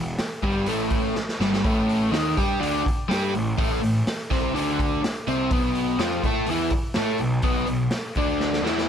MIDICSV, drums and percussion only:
0, 0, Header, 1, 2, 480
1, 0, Start_track
1, 0, Tempo, 483092
1, 1624, Time_signature, 4, 2, 24, 8
1, 8830, End_track
2, 0, Start_track
2, 0, Title_t, "Drums"
2, 183, Note_on_c, 9, 46, 78
2, 184, Note_on_c, 9, 38, 109
2, 283, Note_off_c, 9, 46, 0
2, 284, Note_off_c, 9, 38, 0
2, 424, Note_on_c, 9, 36, 76
2, 429, Note_on_c, 9, 46, 53
2, 523, Note_off_c, 9, 36, 0
2, 528, Note_off_c, 9, 46, 0
2, 658, Note_on_c, 9, 46, 75
2, 758, Note_off_c, 9, 46, 0
2, 898, Note_on_c, 9, 46, 58
2, 903, Note_on_c, 9, 36, 89
2, 997, Note_off_c, 9, 46, 0
2, 1003, Note_off_c, 9, 36, 0
2, 1148, Note_on_c, 9, 38, 58
2, 1247, Note_off_c, 9, 38, 0
2, 1280, Note_on_c, 9, 38, 66
2, 1379, Note_off_c, 9, 38, 0
2, 1398, Note_on_c, 9, 38, 83
2, 1497, Note_off_c, 9, 38, 0
2, 1524, Note_on_c, 9, 38, 85
2, 1623, Note_off_c, 9, 38, 0
2, 1634, Note_on_c, 9, 36, 118
2, 1638, Note_on_c, 9, 46, 74
2, 1733, Note_off_c, 9, 36, 0
2, 1737, Note_off_c, 9, 46, 0
2, 1881, Note_on_c, 9, 46, 54
2, 1980, Note_off_c, 9, 46, 0
2, 2123, Note_on_c, 9, 46, 80
2, 2124, Note_on_c, 9, 38, 107
2, 2223, Note_off_c, 9, 46, 0
2, 2224, Note_off_c, 9, 38, 0
2, 2360, Note_on_c, 9, 36, 84
2, 2367, Note_on_c, 9, 46, 56
2, 2459, Note_off_c, 9, 36, 0
2, 2467, Note_off_c, 9, 46, 0
2, 2611, Note_on_c, 9, 46, 78
2, 2711, Note_off_c, 9, 46, 0
2, 2844, Note_on_c, 9, 36, 82
2, 2859, Note_on_c, 9, 46, 57
2, 2944, Note_off_c, 9, 36, 0
2, 2959, Note_off_c, 9, 46, 0
2, 3092, Note_on_c, 9, 46, 85
2, 3093, Note_on_c, 9, 38, 114
2, 3191, Note_off_c, 9, 46, 0
2, 3192, Note_off_c, 9, 38, 0
2, 3327, Note_on_c, 9, 46, 58
2, 3426, Note_off_c, 9, 46, 0
2, 3562, Note_on_c, 9, 36, 114
2, 3567, Note_on_c, 9, 46, 79
2, 3662, Note_off_c, 9, 36, 0
2, 3667, Note_off_c, 9, 46, 0
2, 3812, Note_on_c, 9, 46, 64
2, 3912, Note_off_c, 9, 46, 0
2, 4046, Note_on_c, 9, 46, 87
2, 4047, Note_on_c, 9, 38, 107
2, 4145, Note_off_c, 9, 46, 0
2, 4146, Note_off_c, 9, 38, 0
2, 4282, Note_on_c, 9, 36, 84
2, 4286, Note_on_c, 9, 46, 58
2, 4287, Note_on_c, 9, 38, 33
2, 4381, Note_off_c, 9, 36, 0
2, 4386, Note_off_c, 9, 46, 0
2, 4387, Note_off_c, 9, 38, 0
2, 4530, Note_on_c, 9, 46, 78
2, 4629, Note_off_c, 9, 46, 0
2, 4762, Note_on_c, 9, 36, 84
2, 4768, Note_on_c, 9, 46, 60
2, 4861, Note_off_c, 9, 36, 0
2, 4868, Note_off_c, 9, 46, 0
2, 5010, Note_on_c, 9, 46, 77
2, 5011, Note_on_c, 9, 38, 106
2, 5109, Note_off_c, 9, 46, 0
2, 5110, Note_off_c, 9, 38, 0
2, 5244, Note_on_c, 9, 46, 55
2, 5343, Note_off_c, 9, 46, 0
2, 5472, Note_on_c, 9, 46, 76
2, 5476, Note_on_c, 9, 36, 113
2, 5571, Note_off_c, 9, 46, 0
2, 5576, Note_off_c, 9, 36, 0
2, 5716, Note_on_c, 9, 46, 59
2, 5816, Note_off_c, 9, 46, 0
2, 5956, Note_on_c, 9, 46, 75
2, 5957, Note_on_c, 9, 38, 113
2, 6055, Note_off_c, 9, 46, 0
2, 6056, Note_off_c, 9, 38, 0
2, 6195, Note_on_c, 9, 36, 83
2, 6198, Note_on_c, 9, 46, 54
2, 6295, Note_off_c, 9, 36, 0
2, 6297, Note_off_c, 9, 46, 0
2, 6424, Note_on_c, 9, 46, 73
2, 6523, Note_off_c, 9, 46, 0
2, 6660, Note_on_c, 9, 46, 60
2, 6667, Note_on_c, 9, 36, 86
2, 6759, Note_off_c, 9, 46, 0
2, 6767, Note_off_c, 9, 36, 0
2, 6896, Note_on_c, 9, 46, 77
2, 6897, Note_on_c, 9, 38, 115
2, 6996, Note_off_c, 9, 46, 0
2, 6997, Note_off_c, 9, 38, 0
2, 7134, Note_on_c, 9, 46, 53
2, 7233, Note_off_c, 9, 46, 0
2, 7375, Note_on_c, 9, 46, 82
2, 7385, Note_on_c, 9, 36, 113
2, 7475, Note_off_c, 9, 46, 0
2, 7485, Note_off_c, 9, 36, 0
2, 7618, Note_on_c, 9, 46, 61
2, 7717, Note_off_c, 9, 46, 0
2, 7857, Note_on_c, 9, 46, 79
2, 7858, Note_on_c, 9, 38, 117
2, 7957, Note_off_c, 9, 46, 0
2, 7958, Note_off_c, 9, 38, 0
2, 8101, Note_on_c, 9, 46, 58
2, 8108, Note_on_c, 9, 36, 76
2, 8200, Note_off_c, 9, 46, 0
2, 8207, Note_off_c, 9, 36, 0
2, 8349, Note_on_c, 9, 38, 61
2, 8449, Note_off_c, 9, 38, 0
2, 8477, Note_on_c, 9, 38, 59
2, 8577, Note_off_c, 9, 38, 0
2, 8603, Note_on_c, 9, 38, 75
2, 8703, Note_off_c, 9, 38, 0
2, 8724, Note_on_c, 9, 38, 72
2, 8823, Note_off_c, 9, 38, 0
2, 8830, End_track
0, 0, End_of_file